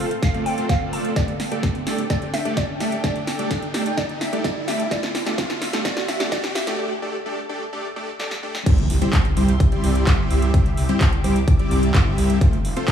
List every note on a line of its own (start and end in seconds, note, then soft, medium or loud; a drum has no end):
0.00 0.14 A3 medium
0.00 0.14 C4 medium
0.00 1.12 C4 medium
0.00 0.14 F4 medium
0.00 0.14 A4 medium
0.00 4.87 A4 medium
0.00 0.14 C5 medium
0.00 0.21 F5 loud
0.00 1.13 F5 medium
0.00 riser medium
0.11 closed hi-hat soft
0.23 0.44 F5 loud
0.23 kick loud
0.23 snare medium
0.23 closed hi-hat medium
0.34 0.55 A3 medium
0.34 0.55 C4 medium
0.34 0.55 F4 medium
0.34 0.55 A4 medium
0.34 0.56 D5 medium
0.34 closed hi-hat soft
0.46 0.70 G5 loud
0.46 open hi-hat loud
0.58 0.78 A3 loud
0.58 0.78 C4 medium
0.58 0.78 F4 medium
0.58 0.78 A4 medium
0.58 0.78 C5 loud
0.58 closed hi-hat soft
0.69 0.94 F5 loud
0.69 kick loud
0.69 snare medium
0.69 closed hi-hat medium
0.81 1.14 A3 medium
0.81 1.14 C4 medium
0.81 1.14 F4 medium
0.81 1.14 A4 medium
0.81 1.14 D5 medium
0.93 1.17 A5 loud
0.93 open hi-hat loud
1.05 closed hi-hat medium
1.16 1.31 A3 medium
1.16 1.31 D4 medium
1.16 6.75 D4 medium
1.16 1.31 G4 medium
1.16 1.31 A4 medium
1.16 1.31 D5 medium
1.16 2.09 D5 loud
1.16 4.88 G5 medium
1.16 kick loud
1.16 snare medium
1.16 closed hi-hat medium
1.28 closed hi-hat soft
1.40 snare medium
1.40 open hi-hat loud
1.51 1.75 A3 medium
1.51 1.75 D4 medium
1.51 1.75 G4 medium
1.51 1.75 A4 medium
1.51 1.75 D5 medium
1.51 closed hi-hat soft
1.63 kick loud
1.63 snare medium
1.63 closed hi-hat medium
1.75 closed hi-hat soft
1.87 2.01 A3 medium
1.87 2.01 D4 medium
1.87 2.01 G4 medium
1.87 2.01 A4 medium
1.87 2.01 D5 medium
1.87 snare medium
1.87 open hi-hat medium
1.98 closed hi-hat medium
2.10 2.25 A3 medium
2.10 2.25 D4 medium
2.10 2.25 G4 medium
2.10 2.25 A4 medium
2.10 2.34 D5 loud
2.10 2.25 D5 medium
2.10 kick loud
2.10 snare medium
2.10 closed hi-hat medium
2.22 closed hi-hat soft
2.34 2.58 E5 loud
2.34 snare medium
2.34 open hi-hat loud
2.45 2.68 A3 medium
2.45 2.68 D4 medium
2.45 2.68 G4 medium
2.45 2.68 A4 medium
2.45 2.68 D5 medium
2.45 closed hi-hat medium
2.57 2.81 D5 loud
2.57 kick loud
2.57 snare medium
2.57 closed hi-hat medium
2.80 2.95 A3 medium
2.80 2.95 D4 medium
2.80 2.95 G4 medium
2.80 2.95 A4 medium
2.80 2.95 D5 medium
2.80 3.05 E5 medium
2.80 snare medium
2.80 open hi-hat loud
2.92 closed hi-hat medium
3.04 3.18 A3 medium
3.04 3.18 D4 medium
3.04 3.18 G4 medium
3.04 3.18 A4 medium
3.04 3.18 D5 medium
3.04 3.96 D5 loud
3.04 kick loud
3.04 snare medium
3.04 closed hi-hat medium
3.16 closed hi-hat soft
3.27 snare medium
3.27 open hi-hat loud
3.39 3.62 A3 medium
3.39 3.62 D4 medium
3.39 3.62 G4 medium
3.39 3.62 A4 medium
3.39 3.62 D5 medium
3.39 closed hi-hat medium
3.51 kick loud
3.51 snare medium
3.51 closed hi-hat medium
3.62 closed hi-hat soft
3.74 3.89 A3 medium
3.74 3.89 D4 medium
3.74 3.89 G4 medium
3.74 3.89 A4 medium
3.74 3.89 D5 medium
3.74 snare medium
3.74 open hi-hat loud
3.86 closed hi-hat medium
3.97 4.12 A3 medium
3.97 4.12 D4 medium
3.97 4.12 G4 medium
3.97 4.12 A4 medium
3.97 4.08 D5 loud
3.97 4.12 D5 medium
3.97 kick loud
3.97 snare medium
3.97 closed hi-hat medium
4.09 closed hi-hat soft
4.21 4.45 E5 medium
4.21 snare medium
4.21 open hi-hat loud
4.33 4.56 A3 medium
4.33 4.56 D4 medium
4.33 4.56 G4 medium
4.33 4.56 A4 medium
4.33 4.56 D5 medium
4.33 closed hi-hat medium
4.44 4.69 D5 loud
4.44 kick loud
4.44 snare medium
4.44 closed hi-hat medium
4.68 4.82 A3 medium
4.68 4.82 D4 medium
4.68 4.82 G4 medium
4.68 4.82 A4 medium
4.68 4.82 D5 medium
4.68 4.92 E5 medium
4.68 snare medium
4.68 open hi-hat loud
4.80 closed hi-hat medium
4.91 5.06 A3 medium
4.91 5.06 D4 medium
4.91 6.77 F4 medium
4.91 5.06 G4 medium
4.91 5.06 A4 medium
4.91 5.06 D5 medium
4.91 5.81 D5 loud
4.91 6.77 E5 medium
4.91 kick loud
4.91 snare medium
4.91 closed hi-hat medium
5.03 snare medium
5.03 closed hi-hat soft
5.15 snare medium
5.15 open hi-hat loud
5.26 5.36 A3 medium
5.26 5.36 D4 medium
5.26 5.36 G4 medium
5.26 5.36 A4 medium
5.26 5.36 D5 medium
5.26 snare medium
5.26 closed hi-hat medium
5.38 5.53 A3 medium
5.38 5.53 D4 medium
5.38 5.53 G4 medium
5.38 5.53 A4 medium
5.38 5.53 D5 medium
5.38 kick loud
5.38 snare loud
5.38 closed hi-hat medium
5.50 snare medium
5.50 closed hi-hat soft
5.62 snare medium
5.62 open hi-hat loud
5.73 5.83 A3 medium
5.73 5.83 D4 medium
5.73 5.83 G4 medium
5.73 5.83 A4 medium
5.73 5.83 D5 medium
5.73 snare medium
5.73 closed hi-hat medium
5.85 6.00 A3 medium
5.85 6.00 D4 medium
5.85 6.00 G4 medium
5.85 6.00 A4 medium
5.85 6.00 D5 medium
5.85 6.09 D5 loud
5.85 kick loud
5.85 snare loud
5.85 closed hi-hat medium
5.97 snare medium
5.97 closed hi-hat soft
6.08 6.33 E5 medium
6.08 snare medium
6.08 open hi-hat medium
6.20 6.30 A3 medium
6.20 6.30 D4 medium
6.20 6.30 G4 medium
6.20 6.30 A4 medium
6.20 6.30 D5 medium
6.20 snare medium
6.20 closed hi-hat medium
6.32 6.46 A3 medium
6.32 6.46 D4 medium
6.32 6.46 G4 medium
6.32 6.46 A4 medium
6.32 6.46 D5 medium
6.32 6.56 D5 loud
6.32 kick loud
6.32 snare loud
6.32 closed hi-hat medium
6.44 snare medium
6.55 6.66 E5 medium
6.55 snare loud
6.55 open hi-hat loud
6.67 6.77 A3 medium
6.67 6.77 D4 medium
6.67 6.77 G4 medium
6.67 6.77 A4 medium
6.67 6.77 D5 medium
6.67 snare medium
6.67 closed hi-hat medium
6.79 6.93 A3 medium
6.79 6.93 D4 medium
6.79 6.93 G4 medium
6.79 6.93 A4 medium
6.79 6.93 D5 medium
7.02 7.17 A3 medium
7.02 7.17 D4 medium
7.02 7.17 G4 medium
7.02 7.17 A4 medium
7.02 7.17 D5 medium
7.26 7.40 A3 medium
7.26 7.40 D4 medium
7.26 7.40 G4 medium
7.26 7.40 A4 medium
7.26 7.40 D5 medium
7.49 7.64 A3 medium
7.49 7.64 D4 medium
7.49 7.64 G4 medium
7.49 7.64 A4 medium
7.49 7.64 D5 medium
7.73 7.87 A3 medium
7.73 7.87 D4 medium
7.73 7.87 G4 medium
7.73 7.87 A4 medium
7.73 7.87 D5 medium
7.96 8.11 A3 medium
7.96 8.11 D4 medium
7.96 8.11 G4 medium
7.96 8.11 A4 medium
7.96 8.11 D5 medium
8.20 8.34 A3 medium
8.20 8.34 D4 medium
8.20 8.34 G4 medium
8.20 8.34 A4 medium
8.20 8.34 D5 medium
8.20 snare medium
8.31 snare medium
8.43 8.57 A3 medium
8.43 8.57 D4 medium
8.43 8.57 G4 medium
8.43 8.57 A4 medium
8.43 8.57 D5 medium
8.55 snare medium
8.66 8.86 C2 loud
8.66 8.81 G3 medium
8.66 8.81 C4 medium
8.66 8.81 E4 medium
8.66 8.81 G4 medium
8.66 12.38 G4 medium
8.66 8.81 C5 medium
8.66 12.38 E5 medium
8.66 10.52 C6 medium
8.66 kick loud
8.66 closed hi-hat medium
8.66 crash loud
8.66 impact medium
8.78 closed hi-hat soft
8.90 9.00 C2 loud
8.90 open hi-hat loud
9.02 9.25 G3 medium
9.02 9.25 C4 medium
9.02 9.25 E4 medium
9.02 9.25 G4 medium
9.02 9.25 C5 medium
9.02 closed hi-hat medium
9.13 9.33 C2 medium
9.13 kick loud
9.13 clap loud
9.13 closed hi-hat medium
9.25 closed hi-hat soft
9.37 9.57 C2 loud
9.37 9.51 G3 medium
9.37 9.51 C4 medium
9.37 9.51 E4 medium
9.37 9.51 G4 medium
9.37 9.51 C5 medium
9.37 open hi-hat loud
9.48 closed hi-hat medium
9.60 9.70 C2 medium
9.60 kick loud
9.60 closed hi-hat medium
9.72 10.04 G3 medium
9.72 10.04 C4 medium
9.72 10.04 E4 medium
9.72 10.04 G4 medium
9.72 10.04 D5 medium
9.72 closed hi-hat soft
9.84 10.04 C2 medium
9.84 open hi-hat loud
9.95 closed hi-hat medium
10.07 10.27 G1 medium
10.07 10.51 G3 medium
10.07 10.51 C4 medium
10.07 10.51 E4 medium
10.07 10.51 G4 medium
10.07 10.51 E5 loud
10.07 kick loud
10.07 clap loud
10.07 closed hi-hat medium
10.31 10.50 C2 medium
10.31 open hi-hat loud
10.42 closed hi-hat medium
10.54 10.74 C2 loud
10.54 10.68 G3 medium
10.54 10.68 C4 medium
10.54 10.68 E4 medium
10.54 10.68 G4 medium
10.54 10.68 C5 medium
10.54 12.40 D6 medium
10.54 kick loud
10.54 closed hi-hat medium
10.66 closed hi-hat soft
10.77 10.87 C2 loud
10.77 open hi-hat loud
10.89 11.12 G3 medium
10.89 11.12 C4 medium
10.89 11.12 E4 medium
10.89 11.12 G4 medium
10.89 11.12 C5 medium
10.89 closed hi-hat medium
11.01 11.21 C2 medium
11.01 kick loud
11.01 clap loud
11.01 closed hi-hat medium
11.13 closed hi-hat soft
11.24 11.44 C2 medium
11.24 11.39 G3 medium
11.24 11.39 C4 medium
11.24 11.39 E4 medium
11.24 11.39 G4 medium
11.24 11.39 C5 medium
11.24 open hi-hat loud
11.36 closed hi-hat medium
11.48 11.58 C2 medium
11.48 kick loud
11.48 closed hi-hat medium
11.59 11.92 G3 medium
11.59 11.92 C4 medium
11.59 11.92 E4 medium
11.59 11.92 G4 medium
11.59 11.92 D5 medium
11.59 closed hi-hat soft
11.71 11.91 C2 loud
11.71 open hi-hat loud
11.83 closed hi-hat medium
11.94 12.14 G1 medium
11.94 12.39 G3 medium
11.94 12.39 C4 medium
11.94 12.39 E4 medium
11.94 12.39 G4 medium
11.94 12.39 E5 loud
11.94 kick loud
11.94 clap loud
11.94 closed hi-hat medium
12.18 12.38 C2 medium
12.18 open hi-hat loud
12.30 closed hi-hat medium
12.41 12.61 F1 loud
12.41 12.56 A3 medium
12.41 12.56 C4 medium
12.41 12.56 F4 medium
12.41 12.92 A4 medium
12.41 12.56 A4 medium
12.41 12.56 C5 medium
12.41 12.92 F5 medium
12.41 12.92 C6 medium
12.41 kick loud
12.41 closed hi-hat medium
12.53 closed hi-hat soft
12.65 12.75 F1 medium
12.65 open hi-hat loud
12.77 12.92 A3 medium
12.77 12.92 C4 medium
12.77 12.92 F4 medium
12.77 12.92 A4 medium
12.77 12.92 C5 medium
12.77 closed hi-hat medium
12.88 12.92 F1 medium
12.88 kick loud
12.88 clap loud
12.88 closed hi-hat medium